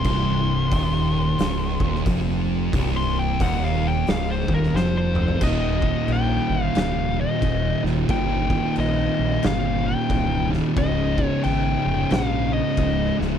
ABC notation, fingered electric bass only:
X:1
M:4/4
L:1/8
Q:"Swing" 1/4=90
K:Cphr
V:1 name="Fingered electric bass" clef=bass
C,,,2 E,,,2 D,,, E,,, F,,,2 | C,,,2 E,,,2 D,,, E,,, F,,,2 | E,,,2 B,,, G,,, D,,,2 E,,, E,,, | G,,,2 B,,, B,,, G,,,2 C,,,2 |
D,,,2 A,,, F,,, B,,,2 D,,, D,,, |]